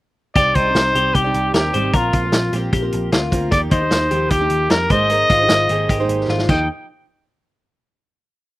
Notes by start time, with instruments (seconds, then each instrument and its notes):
0.35 picked electric bass C2, steel-string acoustic guitar C4 D#4 G4 D5, clean electric guitar G4, trumpet D5, kick, closed hi-hat
0.55 picked electric bass C2, clean electric guitar D#4, trumpet C5, kick, closed hi-hat
0.65 steel-string acoustic guitar D#4 G4 D5
0.69 steel-string acoustic guitar C4
0.75 picked electric bass C2, snare, closed hi-hat
0.94 picked electric bass C2, steel-string acoustic guitar C4 D#4 G4 D5, clean electric guitar G4, closed hi-hat
1.15 picked electric bass C2, clean electric guitar G4, trumpet G4, kick, closed hi-hat
1.24 steel-string acoustic guitar C3 G3 C4 D#4 G4 D5
1.34 picked electric bass C2, closed hi-hat
1.54 picked electric bass D#2, trumpet G4, clean electric guitar A#4, snare, closed hi-hat
1.74 picked electric bass G#1, steel-string acoustic guitar C3 G3 C4 D#4 G4 D5, clean electric guitar C5, closed hi-hat
1.93 picked electric bass A#1, steel-string acoustic guitar A#3 C4 F4 A#4, trumpet F4, clean electric guitar A#4, kick, closed hi-hat
2.13 picked electric bass A#1, clean electric guitar F4, kick, closed hi-hat
2.23 steel-string acoustic guitar C4 F4 A#4
2.32 picked electric bass A#1, snare, closed hi-hat
2.53 picked electric bass A#1, steel-string acoustic guitar A#3 C4 F4, clean electric guitar G4, closed hi-hat
2.57 steel-string acoustic guitar A#4
2.73 picked electric bass A#1, clean electric guitar G4, kick, closed hi-hat
2.82 steel-string acoustic guitar A#3 C4 F4 A#4
2.92 picked electric bass A#1, closed hi-hat
3.12 picked electric bass D2, clean electric guitar F4, snare, closed hi-hat
3.31 picked electric bass D2, steel-string acoustic guitar A#3 C4 F4 A#4, kick, closed hi-hat
3.51 picked electric bass D#2, steel-string acoustic guitar F3 A#3 D#4 G4, clean electric guitar G4, trumpet D5, kick, closed hi-hat
3.71 picked electric bass D#2, clean electric guitar D#4, trumpet C5, kick, closed hi-hat
3.81 steel-string acoustic guitar A#3 D#4 G4
3.91 picked electric bass D#2, snare, closed hi-hat
4.11 picked electric bass D#2, steel-string acoustic guitar F3 A#3 D#4 G4, clean electric guitar G4, closed hi-hat
4.30 picked electric bass D#2, trumpet G4, clean electric guitar G4, kick, closed hi-hat
4.41 steel-string acoustic guitar D#3 F3 A#3 D#4 G4
4.50 picked electric bass D#2, closed hi-hat
4.70 picked electric bass F2, clean electric guitar A#4, trumpet A#4, snare, closed hi-hat
4.89 picked electric bass G#1, steel-string acoustic guitar G#3 A#3 D#4 G#4 C5, clean electric guitar C5, trumpet D#5, kick, closed hi-hat
5.10 steel-string acoustic guitar A#3 D#4 G#4 C5, clean electric guitar A#4, closed hi-hat
5.29 picked electric bass G#1, clean electric guitar F4, kick, snare, closed hi-hat
5.39 steel-string acoustic guitar D#4 G#4 C5
5.49 picked electric bass G#1, snare, closed hi-hat
5.69 picked electric bass G#1, steel-string acoustic guitar A#3 D#4 G#4 C5, clean electric guitar G4, closed hi-hat
5.89 picked electric bass G#1, clean electric guitar G4, kick, closed hi-hat
6.00 steel-string acoustic guitar G#3 A#3 D#4 G#4 C5
6.08 picked electric bass G#1, closed hi-hat
6.28 picked electric bass G#1, clean electric guitar F4, snare
6.39 snare
6.49 picked electric bass D#2, steel-string acoustic guitar D#3 F3 A#3 D#4 G4, clean electric guitar D#4, trumpet G5, kick, crash